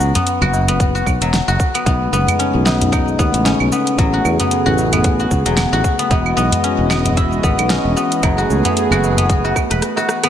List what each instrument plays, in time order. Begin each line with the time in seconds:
Already playing: guzheng F#3 B3 C#4 E4 F#4
0.00 fretless electric bass C#2, cabasa
0.15 guzheng B3, closed hi-hat, tabla tin, tabla ge, cabasa
0.27 closed hi-hat, cabasa
0.41 fretless electric bass F#1, guzheng F#4, tabla ge, claves
0.53 tabla na, cabasa
0.68 guzheng B3, closed hi-hat, tabla tin, tabla ge, cabasa
0.80 kick, closed hi-hat, cabasa
0.95 guzheng F#4, cabasa
1.06 fretless electric bass B1, kick, cabasa, claves
1.21 fretless electric bass E1, guzheng F#3, closed hi-hat, tabla na, cabasa
1.34 snare, closed hi-hat, cabasa
1.48 fretless electric bass F#1, guzheng F#4, tabla na, cabasa
1.60 kick, cabasa
1.74 guzheng B3, closed hi-hat, cabasa, claves
1.86 fretless electric bass B1, analog synth pad C#3 G#3 A3 D#4, guzheng B3, kick, closed hi-hat, tabla na, cabasa
2.13 fretless electric bass F#1, guzheng B3, cabasa
2.27 closed hi-hat, tabla tin, tabla ge, cabasa, claves
2.39 guzheng C#4, closed hi-hat, cabasa
2.55 fretless electric bass B1
2.65 guzheng B3, snare, tabla na, cabasa
2.80 closed hi-hat, tabla tin, tabla ge, cabasa
2.92 guzheng D#4, kick, closed hi-hat, cabasa, claves
3.07 tabla tin, cabasa
3.19 fretless electric bass D#2, guzheng B3, kick, cabasa
3.34 fretless electric bass A1, closed hi-hat, cabasa
3.45 guzheng C#4, snare, closed hi-hat, tabla na, cabasa
3.60 fretless electric bass B1, claves
3.72 guzheng B3, cabasa
3.87 closed hi-hat, cabasa
3.98 fretless electric bass A1, guzheng F#3, analog synth pad B3 G#4, kick, closed hi-hat, tabla na, cabasa
4.14 guzheng F#4
4.25 fretless electric bass E2, cabasa, claves
4.40 guzheng B3, closed hi-hat, tabla tin, tabla ge, cabasa
4.51 closed hi-hat, cabasa
4.66 fretless electric bass A1, guzheng F#4, tabla ge
4.78 tabla na, cabasa
4.93 guzheng B3, closed hi-hat, tabla tin, tabla ge, cabasa, claves
5.04 kick, closed hi-hat, cabasa
5.19 guzheng F#4, cabasa
5.31 fretless electric bass C#2, kick, cabasa
5.46 fretless electric bass E1, guzheng F#3, closed hi-hat, tabla na, cabasa
5.57 snare, closed hi-hat, cabasa, claves
5.72 fretless electric bass A1, guzheng F#4, tabla na, cabasa
5.84 kick, cabasa
5.99 guzheng B3, closed hi-hat, cabasa
6.10 fretless electric bass E1, analog synth pad E3 G#3 F#4 D#5, guzheng B3, kick, closed hi-hat, tabla na, cabasa
6.26 claves
6.37 fretless electric bass B1, guzheng B3, cabasa
6.51 closed hi-hat, tabla tin, tabla ge, cabasa
6.64 guzheng C#4, closed hi-hat, cabasa
6.78 fretless electric bass E1
6.90 guzheng B3, snare, tabla na, cabasa, claves
7.05 closed hi-hat, tabla tin, tabla ge, cabasa
7.17 guzheng E4, kick, closed hi-hat, cabasa
7.32 tabla tin, cabasa
7.43 fretless electric bass G#1, guzheng B3, kick, cabasa
7.59 fretless electric bass B1, closed hi-hat, cabasa, claves
7.70 guzheng C#4, snare, closed hi-hat, tabla na, cabasa
7.85 fretless electric bass E1
7.97 guzheng B3, cabasa
8.12 closed hi-hat, cabasa
8.23 fretless electric bass F#1, guzheng F#3, analog synth pad A3 B3 G#4, kick, closed hi-hat, tabla na, cabasa, claves
8.38 guzheng F#4, cabasa
8.50 fretless electric bass C#2, cabasa
8.64 guzheng B3, closed hi-hat, tabla tin, tabla ge, cabasa
8.77 closed hi-hat, cabasa
8.91 fretless electric bass F#1, guzheng F#4, tabla ge, cabasa, claves
9.04 tabla na, cabasa
9.17 guzheng B3, closed hi-hat, tabla tin, tabla ge, cabasa
9.30 kick, closed hi-hat, cabasa
9.44 guzheng F#4, tabla na, cabasa
9.56 kick, cross-stick, cabasa, claves
9.70 fretless electric bass E1, guzheng B4, cross-stick, closed hi-hat, tabla na, cabasa
9.82 cross-stick, closed hi-hat, cabasa
9.96 guzheng F#4, cross-stick, tabla na, cabasa
10.09 cross-stick, cabasa
10.24 guzheng B3, cross-stick, closed hi-hat, cabasa, claves